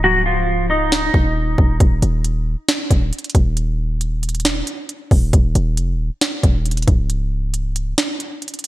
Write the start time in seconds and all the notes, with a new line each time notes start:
Already playing: C#1
0.04 F#3 F#4
0.26 F3 F4
0.70 D#4 D#5
0.92 snare
1.14 D#1, kick
1.58 D#1, kick
1.80 D#1, kick, closed hi-hat
2.02 D#1, closed hi-hat
2.24 closed hi-hat
2.69 snare, closed hi-hat
2.91 D#1, kick, closed hi-hat
3.13 closed hi-hat
3.19 closed hi-hat
3.24 closed hi-hat
3.30 closed hi-hat
3.35 D#1, kick, closed hi-hat
3.57 closed hi-hat
4.01 closed hi-hat
4.23 closed hi-hat
4.29 closed hi-hat
4.35 closed hi-hat
4.40 closed hi-hat
4.45 snare, closed hi-hat
4.67 closed hi-hat
4.89 closed hi-hat
5.11 D#1, kick, open hi-hat
5.33 D#1, kick, closed hi-hat
5.55 D#1, closed hi-hat
5.77 F1, closed hi-hat
5.94 D#1
6.21 snare, closed hi-hat
6.43 D#1, kick, closed hi-hat
6.66 closed hi-hat
6.71 closed hi-hat
6.77 closed hi-hat
6.82 closed hi-hat
6.88 C#1, kick, closed hi-hat
7.10 closed hi-hat
7.54 closed hi-hat
7.76 closed hi-hat
7.98 snare, closed hi-hat
8.20 closed hi-hat
8.42 closed hi-hat
8.48 closed hi-hat
8.54 closed hi-hat
8.59 closed hi-hat
8.64 closed hi-hat